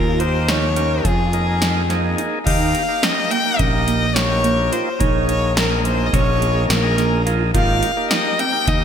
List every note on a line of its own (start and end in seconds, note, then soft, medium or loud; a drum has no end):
0.00 1.01 D#2 medium
0.00 0.21 F4 medium
0.00 0.21 A#4 medium
0.19 0.69 A#3 medium
0.19 0.69 D#4 medium
0.19 0.69 G4 medium
0.19 0.50 C5 medium
0.19 closed hi-hat soft
0.48 0.63 D#4 medium
0.48 1.07 C#5 medium
0.48 snare loud
0.48 closed hi-hat medium
0.76 1.05 A#3 medium
0.76 0.91 C#4 medium
0.76 1.05 D#4 medium
0.76 1.05 G4 medium
0.76 closed hi-hat medium
1.04 2.14 F2 medium
1.04 1.34 F4 medium
1.04 2.18 G#4 medium
1.04 kick medium
1.04 closed hi-hat medium
1.33 1.82 A#3 medium
1.33 1.82 D#4 medium
1.33 1.82 G#4 medium
1.33 closed hi-hat medium
1.61 1.76 D#4 medium
1.61 snare medium
1.61 closed hi-hat medium
1.89 2.39 A#3 medium
1.89 2.04 C4 medium
1.89 2.39 D#4 medium
1.89 2.39 G#4 medium
1.89 snare soft
1.89 closed hi-hat soft
2.17 2.33 D#4 medium
2.17 closed hi-hat medium
2.46 2.73 D#2 medium
2.46 2.83 A#3 medium
2.46 2.76 D#4 medium
2.46 2.83 D#4 medium
2.46 2.83 G4 medium
2.46 3.04 F5 medium
2.46 kick medium
2.46 closed hi-hat medium
2.46 crash medium
2.75 closed hi-hat medium
2.88 3.38 A#3 medium
2.88 3.38 D#4 medium
2.88 3.38 G4 medium
3.02 3.18 C#4 medium
3.02 3.32 D#5 medium
3.02 snare medium
3.02 closed hi-hat medium
3.31 3.46 A#3 medium
3.31 3.60 G5 loud
3.31 closed hi-hat medium
3.45 4.07 A#3 medium
3.45 4.07 D#4 medium
3.45 4.07 G4 medium
3.58 4.69 A#1 medium
3.58 3.74 C#4 medium
3.58 4.17 D#5 medium
3.58 kick medium
3.58 closed hi-hat medium
3.87 4.17 A#3 medium
3.87 closed hi-hat medium
4.15 4.89 A#3 medium
4.15 4.89 D#4 medium
4.15 4.90 G4 medium
4.15 4.73 C#5 loud
4.15 snare loud
4.15 closed hi-hat medium
4.44 4.59 A#3 medium
4.44 closed hi-hat medium
4.72 4.87 F4 medium
4.72 5.01 C5 medium
4.72 closed hi-hat medium
5.00 6.10 A#1 medium
5.00 5.61 A#3 medium
5.00 5.61 D#4 medium
5.00 5.30 D#4 loud
5.00 5.62 G#4 medium
5.00 5.28 C#5 medium
5.00 kick loud
5.00 closed hi-hat medium
5.29 5.55 C#5 medium
5.29 closed hi-hat medium
5.57 5.72 C#4 medium
5.57 5.84 A#4 medium
5.57 snare loud
5.57 closed hi-hat medium
5.71 6.69 A#3 medium
5.71 6.69 D#4 medium
5.71 6.69 G#4 medium
5.85 6.00 A#3 medium
5.85 6.07 C5 medium
5.85 closed hi-hat medium
6.06 6.15 D#5 medium
6.13 6.66 A#1 medium
6.13 6.28 C#4 medium
6.13 6.68 C#5 medium
6.13 kick medium
6.13 closed hi-hat medium
6.41 6.71 A#3 medium
6.41 closed hi-hat medium
6.69 7.51 A#1 loud
6.69 7.29 A#4 medium
6.69 snare loud
6.69 closed hi-hat medium
6.83 6.96 A#3 medium
6.83 6.96 D#4 medium
6.83 6.96 G#4 medium
6.97 7.22 A#3 medium
6.97 7.13 A#3 medium
6.97 7.23 D#4 medium
6.97 7.23 G#4 medium
6.97 snare soft
6.97 closed hi-hat medium
7.26 7.51 A#3 medium
7.26 7.51 D#4 medium
7.26 7.41 F4 medium
7.26 7.51 G#4 medium
7.26 closed hi-hat medium
7.54 7.81 G#1 medium
7.54 7.91 A#3 medium
7.54 7.92 D#4 medium
7.54 7.84 F4 medium
7.54 7.92 G4 medium
7.54 8.08 F5 medium
7.54 kick medium
7.54 closed hi-hat medium
7.83 closed hi-hat medium
7.97 8.46 A#3 medium
7.97 8.46 D#4 medium
7.97 8.46 G4 medium
8.11 8.26 D#4 medium
8.11 8.41 D#5 medium
8.11 snare loud
8.11 closed hi-hat medium
8.39 8.54 C4 medium
8.39 8.69 G5 loud
8.39 closed hi-hat medium
8.52 8.84 A#3 medium
8.52 8.84 D#4 medium
8.52 8.84 G4 medium
8.67 8.84 D#2 medium
8.67 8.82 D#4 medium
8.67 8.84 D#5 medium
8.67 kick loud
8.67 snare soft
8.67 closed hi-hat medium